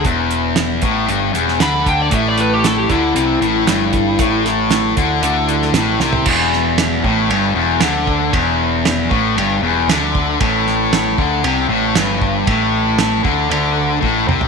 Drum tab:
CC |----------------|----------------|----------------|x---------------|
RD |----------------|----------------|----------------|----b---b---b---|
HH |x-x-x-x-x-x-x-x-|x-x-x-x-x-x-x-x-|x-x-x-x-x-x-x---|----------------|
SD |----o------oo---|----o-------o---|--o-o------oo-o-|--o-o-------o---|
T2 |----------------|----------------|----------------|----------------|
FT |----------------|----------------|---------------o|----------------|
BD |o-----o-------o-|o-----o-------o-|o-----o---------|o-----o-------o-|

CC |----------------|----------------|----------------|
RD |b---b---b---b---|b---b---b---b---|b---b---b-------|
HH |----------------|----------------|----------------|
SD |----o-------o---|--o-o-------o---|----o-----------|
T2 |----------------|----------------|--------------o-|
FT |----------------|----------------|---------------o|
BD |o-----o-------o-|o-----o-------o-|o-----o-----o---|